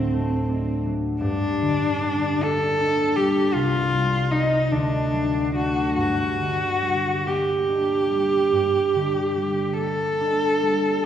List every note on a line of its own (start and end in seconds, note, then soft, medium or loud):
0.00 1.25 D2 soft
0.00 1.24 A2 soft
0.00 0.85 F#3 soft
0.00 0.86 C4 medium
0.13 1.24 A3 soft
0.49 2.79 D4 soft
0.86 1.25 F#3 soft
1.21 3.56 G2 soft
1.21 2.45 D4 medium
1.62 3.57 D3 soft
2.03 3.15 G3 soft
2.42 3.57 A#3 soft
2.42 3.17 A4 medium
2.80 3.57 D4 soft
3.16 3.91 G3 soft
3.16 3.55 G4 medium
3.54 4.75 C2 soft
3.54 4.33 F4 medium
3.92 4.75 G3 soft
4.31 4.75 C4 soft
4.31 4.73 D#4 medium
4.31 4.75 D#4 soft
4.71 6.01 D2 soft
4.71 5.55 D4 medium
5.13 6.01 F#3 soft
5.55 6.02 A3 soft
5.55 7.67 D4 soft
5.55 5.97 F#4 medium
5.96 8.52 G2 soft
5.96 7.28 F#4 medium
6.38 8.94 D3 soft
6.82 8.09 G3 soft
7.26 9.77 A#3 soft
7.26 9.78 G4 soft
7.69 10.19 D4 soft
8.10 9.36 G3 soft
8.53 11.03 G2 soft
8.95 11.06 D3 soft
9.37 10.61 G3 soft
9.78 11.06 A#3 soft
9.78 11.05 A4 medium
10.21 11.06 D4 soft
10.63 11.06 G3 soft